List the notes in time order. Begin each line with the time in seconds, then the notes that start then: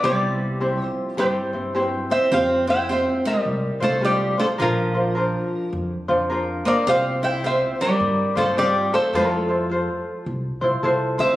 0.03 C2 G3 C4 E4 G4 C5 D5
0.60 C4 E4 G4 C5
0.80 F3
0.86 C5
1.17 G2 G3 C4 E4 G4 C5
1.53 G2 C4 E4 C5
1.75 F#3 C4 E4 G4 C5
1.79 B4
2.11 C4 E4 C5 E5
2.31 F2 C4 F4 G4 C5 F5
2.67 C4 E4 F4 C5 E5 G5
2.89 C4 F4 G4 C5 E5
3.25 G3 A#4 D5
3.45 C2
3.80 C2 A3 C4 F4 A4 C5
4.01 G3 C4 F4 G4 C5
4.05 D5
4.38 A3 C4 F4 A4 C5
4.58 A#1 F3 D4 F4 A#4 C5
4.62 A#4
4.94 D4 F4 C5
5.15 D4 F4 A#4 C5
5.73 F2
6.08 F2 D4 F4 C5
6.30 D4 F4 A#4 C5
6.65 A#3 D4 F4 A#4 C5 D5
6.87 C2 C4 F4 G4 C5 F5
7.22 C4 E4 F4 C5 E5 G5
7.43 C4 F4 G4 C5 E5
7.81 G3 A#4 D5
8.00 G2
8.35 G2 A3 C4 F4 A4 C5
8.57 G3 C4 F4 G4 C5 D5
8.93 A3 C4 F4 A4 C5
9.13 F2 F3 E4 F4 A4 C5
9.48 E4 F4 C5
9.70 F4 A4 C5
10.26 C2
10.61 C2 E4 F4 C5
10.83 C2 E4 F4 A4 C5
11.18 D2 C4 E4 F4 C5 E5